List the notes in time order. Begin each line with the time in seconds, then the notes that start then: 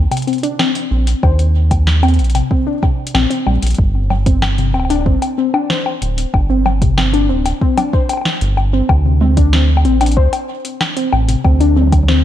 0.11 C3, closed hi-hat, high bongo
0.17 closed hi-hat
0.22 closed hi-hat
0.27 C4, closed hi-hat
0.33 closed hi-hat
0.38 closed hi-hat
0.43 D4, closed hi-hat
0.59 C4, snare, high bongo
0.75 closed hi-hat
0.91 A#1 C4
1.07 closed hi-hat
1.23 D#2 C5, kick, high bongo
1.39 closed hi-hat
1.71 kick, closed hi-hat, high bongo
1.87 snare
2.03 C4, closed hi-hat, high bongo
2.08 closed hi-hat
2.14 closed hi-hat
2.19 A#1, closed hi-hat
2.24 closed hi-hat
2.30 closed hi-hat
2.35 C3, closed hi-hat, high bongo
2.51 C4, kick
2.67 D4
2.83 C3, kick, high bongo
3.07 closed hi-hat
3.14 A#1 C4, snare, high bongo
3.30 C4, closed hi-hat
3.46 A#1 G3, high bongo
3.62 A#1, closed hi-hat
3.67 closed hi-hat
3.70 closed hi-hat
3.74 closed hi-hat
3.78 G1, kick
4.10 high bongo, low conga
4.26 C4, kick, closed hi-hat
4.42 snare, high bongo
4.58 C3, closed hi-hat
4.74 D1 C4, high bongo
4.80 high bongo
4.85 high bongo
4.90 D4, closed hi-hat, high bongo
4.95 high bongo
5.01 high bongo
5.06 G1 C4, kick
5.22 closed hi-hat, high bongo
5.38 C4
5.54 D4, high bongo
5.70 C5, snare
5.86 high bongo
6.02 D1, closed hi-hat
6.18 closed hi-hat
6.34 G1, kick, high bongo
6.50 C4
6.66 high bongo, low conga
6.82 C3, kick, closed hi-hat
6.97 C4, snare, high bongo
7.13 D4, closed hi-hat
7.29 D1 C4
7.46 closed hi-hat, high bongo
7.61 C4, kick
7.78 D4, closed hi-hat, high bongo, low conga
7.93 C5, kick
8.09 closed hi-hat, high bongo
8.13 high bongo
8.17 high bongo
8.21 high bongo
8.25 snare, high bongo
8.29 high bongo
8.33 high bongo
8.37 G1, high bongo
8.41 closed hi-hat
8.57 high bongo
8.73 C4
8.89 D2, kick, high bongo
9.05 C3
9.21 C4, low conga
9.37 D4, kick, closed hi-hat
9.53 C4, snare
9.77 high bongo
9.85 A1 C4, closed hi-hat
10.01 D4, closed hi-hat, high bongo
10.06 closed hi-hat
10.12 closed hi-hat
10.17 D2 C5, kick
10.33 closed hi-hat, high bongo
10.65 closed hi-hat
10.81 snare, high bongo
10.97 C4, closed hi-hat
11.13 A1, high bongo
11.28 C3, closed hi-hat
11.44 D2 C4, kick, high bongo
11.60 D4, closed hi-hat
11.76 C4, low conga
11.82 low conga
11.87 low conga
11.92 kick, closed hi-hat, high bongo, low conga
11.98 low conga
12.03 low conga
12.08 C4, snare